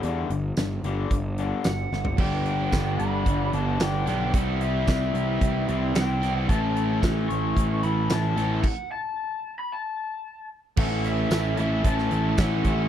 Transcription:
0.03 E2 G2 D3 G3, closed hi-hat
0.30 G1 G2 D3, closed hi-hat
0.57 G1 G2 D3, snare, closed hi-hat, tambourine
0.83 G1 G2 D3 G3, closed hi-hat
1.10 G1 G2 D3, kick, closed hi-hat
1.38 G2 D3 G3, closed hi-hat
1.64 G1 G2 D3 F#5, snare, closed hi-hat, tambourine
1.92 G1 G2 D3, snare
2.05 floor tom
2.18 G1 G2 D3 G3 B3 D4 G4 G5, kick, crash
2.45 closed hi-hat
2.72 G1, kick, snare, closed hi-hat, tambourine
2.99 G1 B5, closed hi-hat
3.26 G1, kick, closed hi-hat
3.53 G1 G2 D3 G3 B3 D4 G4 A5, closed hi-hat
3.80 G1 G2 D3 G3 B3 D4 G4 G5, snare, closed hi-hat, tambourine
4.06 B1 G2 D3 G3 B3 D4 G5, snare, closed hi-hat
4.34 C2 C3 E3 G3 C4 E4 F#5, kick, closed hi-hat
4.61 E5, closed hi-hat
4.87 C2 E5, kick, snare, closed hi-hat, tambourine
5.14 C2, closed hi-hat
5.41 C2, kick, closed hi-hat
5.68 C2 C3 E3 G3 C4 E4, closed hi-hat
5.95 C2 C3 E3 G3 C4 E4 G5, snare, closed hi-hat, tambourine
6.21 C3 G3 C4 E4, snare, closed hi-hat
6.36 F#5
6.48 A1 A2 E3 A3 C#4 E4 A5, kick, closed hi-hat
6.76 closed hi-hat
7.03 A1, kick, snare, closed hi-hat, tambourine
7.29 A1 C#6, closed hi-hat
7.56 A1, kick, closed hi-hat
7.83 A1 A2 E3 A3 C#4 E4 B5, closed hi-hat
8.10 A1 A2 E3 A3 C#4 E4 A5, snare, closed hi-hat, tambourine
8.36 A1 A2 E3 A3 C#4 E4, snare, closed hi-hat
8.63 F#5, kick, crash
8.92 A5
9.59 B5
9.72 A5
10.76 A1 A2 E3 A3 C#4 E4 A4 F#5, kick, crash
11.04 E5, closed hi-hat
11.31 A1 A2 E3 A3 C#4 E4, snare, closed hi-hat, tambourine
11.57 A1 A2 E3 A3 C#4 E4 E5, closed hi-hat
11.84 A1 A2 E3 A3 C#4 E4 A5, kick, closed hi-hat
11.98 snare
12.11 A1, closed hi-hat
12.38 A1 A2 E3 A3 C#4 E4 F#5, kick, snare, closed hi-hat, tambourine
12.64 A1 A2 E3 A3 C#4 E4, kick, closed hi-hat

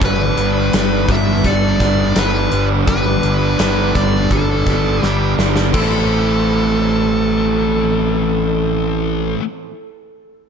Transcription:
Already playing: D4
0.00 G1 G2 D3 G3 B3 D4, kick, closed hi-hat
0.05 B4
0.36 G1 G3 B3 D4, closed hi-hat
0.72 G1 G2 D3 G3 B3 D4, snare, closed hi-hat
1.09 G1 D3 G3 D4 E5, kick, closed hi-hat
1.44 G1 G2 D3 G3 A4 D5, kick, closed hi-hat
1.80 G1 G3 B3 D4, kick, snare, closed hi-hat
2.15 G1 G2 D3 G3 B3 B4, snare, closed hi-hat
2.19 D4
2.51 G1 G3 B3 D4, closed hi-hat
2.87 G1 G2 D3 G3 B3 D4 B4, kick, closed hi-hat
3.23 G1 G3 B3 D4, closed hi-hat
3.58 G1 G2 D3 G3 B3 D4, snare, closed hi-hat
3.94 G1 G3 D4 D5, kick, closed hi-hat
3.99 D3
4.30 G1 G2 D3 G3 A4, kick, closed hi-hat
4.66 G1 G3 B3 D4, kick, snare, closed hi-hat
5.02 G1 G2 D3 G3 B3 D4 G4, snare
5.38 G1 G3 B3 D4, snare
5.56 snare
5.73 A1 A2 E3 A3 C4 E4 A4, kick, crash
5.78 A4

